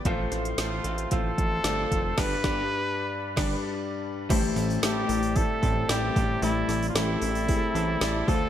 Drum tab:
CC |----------------|x--------x------|x---------------|----------------|
HH |x-xxx-xxx-x-x-x-|----------------|o-ooo-ooo-o-o-o-|o-ooo-ooo-o-o-o-|
SD |--o-o-------o---|o-o------o------|--o-o-------o---|--o-o-------o---|
BD |o-------o-o---o-|o-o------o------|o-------o-o---o-|--------o-----o-|